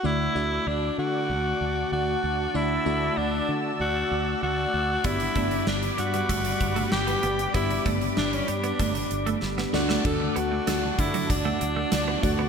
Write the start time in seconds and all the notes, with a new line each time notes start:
0.03 D2 D3 A3 D4 E4 F#4 D5 A5 D6
0.35 D2 A3 D4 F#4 D5
0.67 D2 D4
0.98 D3 F#4
1.30 D2
1.61 D2
1.92 D2 F#4
2.24 D2
2.54 D2 D3 A3 D4 E4 F#4 D5 E6
2.85 D2 A3 D4 F#4 D5
3.18 D2 D4
3.49 D3
3.80 D2 F#4
4.11 D2
4.43 D2 F#4
4.74 D2
5.04 G1 G2 G3 B3 D4 E4 G4 D5 B5 D6, kick, closed hi-hat
5.20 closed hi-hat
5.36 G1 G3 A3 B3 D4 D5, kick, closed hi-hat
5.51 muted clean electric guitar stroke, closed hi-hat
5.67 G1 D4, muted clean electric guitar stroke, snare
5.83 closed hi-hat
5.98 G2 G3 F#4, closed hi-hat
6.14 B3, closed hi-hat
6.29 G1 A3, kick, closed hi-hat
6.45 muted clean electric guitar stroke, closed hi-hat
6.60 G1, kick, closed hi-hat
6.76 A3, closed hi-hat
6.92 G1 G4, muted clean electric guitar stroke, snare
7.07 B3, closed hi-hat
7.23 G1 B3, closed hi-hat
7.39 closed hi-hat
7.54 G1 G2 B3 D4 E4 G4 D5, kick, closed hi-hat
7.70 closed hi-hat
7.85 G1 A3 B3 D4 G4 D5, kick, closed hi-hat
8.01 muted clean electric guitar stroke, closed hi-hat
8.17 G1 D4, muted clean electric guitar stroke, snare
8.33 C#4, closed hi-hat
8.48 G2 G3 D4, closed hi-hat
8.64 B3, closed hi-hat
8.79 G1 A3, kick, closed hi-hat
8.95 muted clean electric guitar stroke, closed hi-hat
9.11 G1, closed hi-hat
9.26 A3, closed hi-hat
9.42 G1, snare
9.58 B3, snare
9.73 D2 A3 D4 F#4 D5 A5, muted clean electric guitar stroke, snare
9.89 A3, snare
10.04 D2 D3 A3 D4 F#4 A4 D5 A5 D6, kick, crash
10.20 muted clean electric guitar stroke
10.36 D2 B3 F#4, closed hi-hat
10.52 A3
10.67 D2 A3 D4 F#4 D5, snare, closed hi-hat
10.83 muted clean electric guitar stroke
10.99 D3 E4, kick, closed hi-hat
11.14 F#3, closed hi-hat
11.30 D2 D4, kick, closed hi-hat
11.45 A3
11.61 D2, muted clean electric guitar stroke, closed hi-hat
11.76 A3
11.92 D2, snare, closed hi-hat
12.08 B3
12.23 D2 A3 D4 F#4 D5, muted clean electric guitar stroke, kick, closed hi-hat
12.39 B3